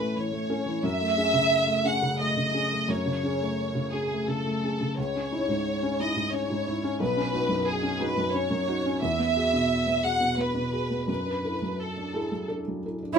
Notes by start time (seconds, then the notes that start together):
Already playing: A2 E3 C#4 A4 B4
0.00 A3
0.16 E3 C#5
0.32 A3
0.49 C#4 A4
0.66 E3
0.83 F#2 E5
1.00 A3
1.17 C#4 G#4
1.34 C#3
1.67 A3
1.84 C#4 G#4 F#5
2.02 C#3
2.19 A3 D#5
2.37 C#3
2.54 C#4 G#4
2.71 A3
2.88 F#2 C#5
3.06 C#3
3.23 C#4 G#4
3.41 A3
3.75 C#3
3.93 C#4 G#4
4.12 A3
4.27 C#3 A4
4.46 A3
4.64 C#4 G#4
4.81 C#3
4.98 C#2 C#5
5.15 C#4
5.32 D#4 E4
5.49 G#2
5.83 C#4
6.00 D#4 E4 D#5
6.16 G#2
6.33 C#4 C#5
6.50 G#2
6.67 D#4 E4
6.84 C#4
7.00 B1 B4
7.17 C#4
7.34 D#4 F#4
7.49 F#2
7.67 G#4
7.83 C#4
8.00 D#4 F#4 B4
8.17 F#2
8.34 C#4 C#5
8.50 F#2
8.68 D#4 F#4
8.86 C#4
9.02 E2 E5
9.19 B3
9.37 F#4 G#4
9.53 B2
9.87 B3
10.03 F#4 G#4 F#5
10.20 B2
10.37 B3 B4
10.55 B2
10.73 F#4 G#4
10.91 B3
11.08 F#2 B4
11.26 D4
11.44 E4 A4
11.62 F#3
11.79 A4
11.97 D4
12.14 E4 G#4 A4
12.32 F#3
12.48 D4 A4
12.68 F#3
12.86 E4 A4
13.02 D4